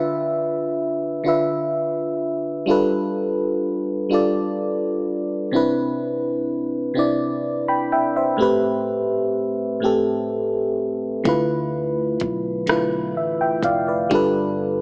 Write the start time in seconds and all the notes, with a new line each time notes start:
Already playing: D3 D4 F4 B4 E5
1.24 D3 D4 F4 B4
1.29 E5
2.66 G3 D4 F4 A4
2.71 B4
4.09 G3 D4 F4 A4
4.14 D5
5.51 C3 C4 D4 E4
5.56 B4
6.94 C3 C4 D4 E4
6.99 D5
7.68 G5 B5
7.92 E5 G5
8.16 C5 E5
8.37 A2 A3 C4 G4
8.42 B4
9.80 A2 A3 C4 G4
9.85 A4
11.24 D2 D3 A3 E4 F4, kick, closed hi-hat
11.29 B4
12.20 B1, kick, closed hi-hat
12.66 D3 A3 E4, cross-stick, closed hi-hat
12.71 F4 B4
13.17 A1 E5
13.41 E5 G5
13.63 F1 D5 F5, kick, closed hi-hat
13.88 B4 D5
14.10 G1 G3 D4 F4, kick, closed hi-hat
14.14 A4 B4